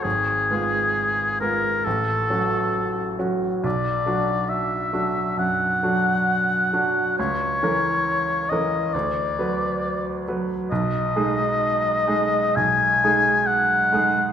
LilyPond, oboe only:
\new Staff \with { instrumentName = "Oboe" } { \time 4/4 \key b \dorian \tempo 4 = 67 aes'4. ais'8 a'4. r8 | d''4 e''4 fis''2 | cis''4. dis''8 d''4. r8 | \key gis \dorian dis''2 gis''4 fis''4 | }